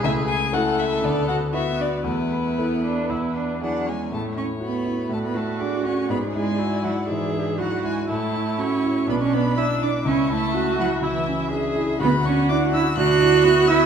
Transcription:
<<
  \new Staff \with { instrumentName = "Violin" } { \time 4/4 \key a \major \tempo 4 = 122 gis'4 a'2 fis'4 | e'2. fis''8 gis''8 | a''8 cis'''8 b''4 a''16 b''16 a''8 d'''8 cis'''8 | b''8 gis''4 fis''8 e''4 fis''8 gis''8 |
a''4 cis'''4 b''16 cis'''16 b''8 e'''8 d'''8 | cis'''8 a''4 fis''8 e''4 r4 | b''8 cis'''8 d'''8 e'''8 fis'''4. e'''8 | }
  \new Staff \with { instrumentName = "Violin" } { \time 4/4 \key a \major e''8 gis''8 fis''8 e''8 d''8 fis''8 e''8 d''8 | b'2. r4 | cis''2 d''2~ | d''1 |
cis''2 d''2 | e''1 | fis''2 e''2 | }
  \new Staff \with { instrumentName = "Grand piano" } { \time 4/4 \key a \major cis,4 <cis' e' a'>4 d,4 <b fis' b'>4 | e,4 <b e' a'>4 e,4 <b e' gis'>4 | a,8 e'8 fis'8 e'8 a,8 fis'8 gis'8 fis'8 | gis,8 e'8 fis'8 e'8 gis,8 d'8 e'8 e'8 |
a,8 e'8 fis'8 e'8 b,,8 d'8 e'8 d'8 | cis,8 e'8 fis'8 e'8 cis,8 cis'8 d'8 e'8 | d,8 d'8 e'8 d'8 d,8 e'8 fis'8 e'8 | }
  \new Staff \with { instrumentName = "Viola" } { \time 4/4 \key a \major a4 a4 b4 b4 | a4 b8 d'8 e'8 d'8 d'8 cis'8 | r2 fis'2 | gis'4 e'4 gis'4 fis'4 |
e'2 d'4 d'4 | e'4 fis'4 e'4 gis'4 | fis'2 d'4 b4 | }
  \new Staff \with { instrumentName = "Cello" } { \time 4/4 \key a \major e'8 gis'8 fis'8 e'8 d'8 fis'8 e'8 d'8 | b2. fis8 gis8 | a8 cis'8 b4 a16 b16 a8 d'8 cis'8 | b8 gis4 fis8 e4 fis8 gis8 |
a4 cis'4 b16 cis'16 b8 e'8 d'8 | cis'8 a4 fis8 e4 r4 | b8 cis'8 d'8 e'8 fis'4. e'8 | }
>>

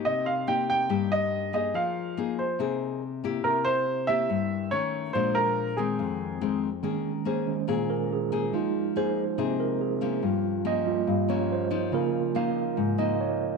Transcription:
<<
  \new Staff \with { instrumentName = "Grand piano" } { \time 4/4 \key f \minor \tempo 4 = 142 ees''8 f''8 g''8 g''4 ees''4 ees''8 | f''4. c''4 r4. | bes'8 c''4 e''4. cis''4 | c''8 bes'4 aes'2 r8 |
r1 | r1 | r1 | r1 | }
  \new Staff \with { instrumentName = "Tine electric piano" } { \time 4/4 \key f \minor r8 c'''4~ c'''16 r2 r16 | r1 | r4. e'''4~ e'''16 r4 r16 | r1 |
r4 c''4. bes'8 aes'4 | f'8 r8 c''4. bes'8 aes'4 | f'8 r8 ees''4. des''8 c''4 | bes'8 r8 f''4. ees''8 des''4 | }
  \new Staff \with { instrumentName = "Tine electric piano" } { \clef bass \time 4/4 \key f \minor r1 | r1 | r1 | r1 |
<ees aes des'>4. <ees aes des'>8 r2 | <f aes ees'>8 r2. r8 | r4. <g bes f'>8 r2 | <des bes f'>8 r2. r8 | }
  \new Staff \with { instrumentName = "Nylon-string guitar" } { \time 4/4 \key f \minor << { <bes ees' g'>4 <bes ees' g'>4 <bes ees' g'>4. <bes ees' aes'>8~ | <bes ees' aes'>4 <bes ees' aes'>8 r8 <bes ees' aes'>4 r8 <bes e' g'>8~ | <bes e' g'>4 r8 <bes e' g'>4. <ees a cis'>4 | <f aes d'>4. <ees aes c'>4. <ees aes c'>8 r8 |
<bes des' aes'>8 r8 <bes des' aes'>8 r8 <bes des' aes'>4 r8 <bes ees' aes'>8~ | <bes ees' aes'>4 <bes ees' aes'>8 r8 <bes ees' aes'>4 r8 <f bes des'>8~ | <f bes des'>4 <f bes des'>4 r8 <f bes des'>4 <f bes ees'>8~ | <f bes ees'>4 <f bes ees'>4. <f bes ees'>4. | } \\ { c2 g,2 | f2 c2 | c2 g,4 r4 | bes,2 f,2 |
ees2 bes,2 | f2 c2 | g,2 g,2 | des2 aes,2 | } >> }
>>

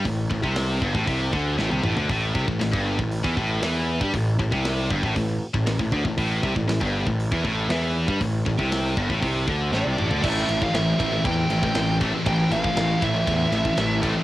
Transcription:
<<
  \new Staff \with { instrumentName = "Lead electric guitar" } { \time 4/4 \key a \minor \tempo 4 = 118 r1 | r1 | r1 | r1 |
r2. d''4 | e''8. f''16 e''4 g''4. r8 | g''8 f''4 e''2 r8 | }
  \new Staff \with { instrumentName = "Distorted electric guitar" } { \time 4/4 \key a \minor r1 | r1 | r1 | r1 |
r1 | <a, e a c' e'>4. <a, e a c' e'>2~ <a, e a c' e'>8 | <a, e a c' e'>4. <a, e a c' e'>2~ <a, e a c' e'>8 | }
  \new Staff \with { instrumentName = "Distorted electric guitar" } { \clef bass \time 4/4 \key a \minor a,8 a,16 c8. g,16 a,16 c8 d8 a,16 c16 a,16 d16 | a,8 c16 a,16 a,16 g,8 a,8 e16 a,8 e8. g16 | a,8 a,16 c8. g,16 a,16 a,8 r16 a,16 a,16 a,16 d16 a,16 | a,8 c16 a,16 a,16 g,8 a,8 e16 a,8 e8. g16 |
a,8 a,16 c8. g,16 a,16 c8 d8 a,16 c16 a,16 d16 | <a, e a>8 <a, e>16 <a, e>16 <a, e>8 <a, e>16 <a, e>16 <a, e>8 <a, e>16 <a, e>16 <a, e>8 <a, e a>16 <a, e>16 | <a, e>8 <a, e>16 <a, e>16 <a, e>8 <a, e>16 <a, e>16 <a, e>8 <a, e>16 <a, e>16 <a, e>8 <a, e a>16 <a, e>16 | }
  \new Staff \with { instrumentName = "Distorted electric guitar" } { \clef bass \time 4/4 \key a \minor a,8 a,16 c8. g,16 a,16 c8 d8 a,16 c16 a,16 d16 | a,8 c16 a,16 a,16 g,8 a,8 e16 a,8 e8. g16 | a,8 a,16 c8. g,16 a,16 a,8 r16 a,16 a,16 a,16 d16 a,16 | a,8 c16 a,16 a,16 g,8 a,8 e16 a,8 e8. g16 |
a,8 a,16 c8. g,16 a,16 c8 d8 a,16 c16 a,16 d16 | <a, e a>8 <a, e>16 <a, e>16 <a, e>8 <a, e>16 <a, e>16 <a, e>8 <a, e>16 <a, e>16 <a, e>8 <a, e a>16 <a, e>16 | <a, e>8 <a, e>16 <a, e>16 <a, e>8 <a, e>16 <a, e>16 <a, e>8 <a, e>16 <a, e>16 <a, e>8 <a, e a>16 <a, e>16 | }
  \new Staff \with { instrumentName = "Picked electric bass" } { \clef bass \time 4/4 \key a \minor a,,8 a,,16 c,8. g,,16 a,,16 c,8 d,8 a,,16 c,16 a,,16 d,16 | a,,8 c,16 a,,16 a,,16 g,,8 a,,8 e,16 a,,8 e,8. g,16 | a,,8 a,,16 c,8. g,,16 a,,16 a,,8 r16 a,,16 a,,16 a,,16 d,16 a,,16 | a,,8 c,16 a,,16 a,,16 g,,8 a,,8 e,16 a,,8 e,8. g,16 |
a,,8 a,,16 c,8. g,,16 a,,16 c,8 d,8 a,,16 c,16 a,,16 d,16 | a,,8 a,,8 a,,8 a,,8 e,8 a,,8 a,,4 | a,,8 a,,8 a,,8 a,,8 e,8 a,,8 a,,4 | }
  \new DrumStaff \with { instrumentName = "Drums" } \drummode { \time 4/4 <hho bd>8 bd16 bd16 <hho sn>8 bd16 bd16 <hho bd>8 bd8 sn16 tommh16 toml16 tomfh16 | <hho bd>8 bd16 bd16 <hho sn>16 bd8 bd16 hho16 bd16 bd8 <hho sn>8. bd16 | <hho bd>8 bd16 bd16 <hho sn>8 bd16 bd16 <hho bd>8. bd16 <hho sn>16 bd16 bd16 bd16 | <hho bd>8 bd16 bd16 <hho sn>16 bd8 bd16 hho16 bd16 bd8 <hho sn>8. bd16 |
<hho bd>8 bd16 bd16 <hho sn>8 bd16 bd16 <hho bd>8 bd8 sn8 toml16 tomfh16 | <cymc bd>8 cymr16 bd16 <cymr sn>8 <bd cymr>8 <bd cymr>8 cymr16 bd16 <cymr sn>8 <bd cymr>8 | <bd cymr>8 cymr16 bd16 <cymr sn>8 <bd cymr>8 <bd cymr>8 cymr16 bd16 <cymr sn>8 <bd cymr>8 | }
>>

